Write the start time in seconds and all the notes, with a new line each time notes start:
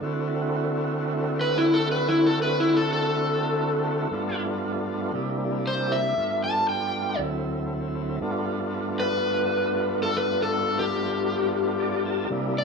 0.01 D3 A3 C4 E4 F#4
1.41 B4
1.58 E4
1.74 A4
1.91 B4
2.08 E4
2.26 A4
2.42 B4
2.60 E4
2.77 A4
2.93 A4
4.11 G2 A3 B3 D4 F4
5.13 C3 G3 A#3 D4 E4
5.67 C5
5.92 E5
6.16 G2 A3 B3 D4 F4
6.44 A5
6.69 G5
7.17 D2 F#3 A3 C4 E4
8.20 G2 A3 B3 D4 F4
9.00 B4
10.03 A4
10.17 B4
10.43 A4
10.79 G4
11.80 D5
12.05 A5
12.30 C3 G3 A#3 D4 E4
12.58 D5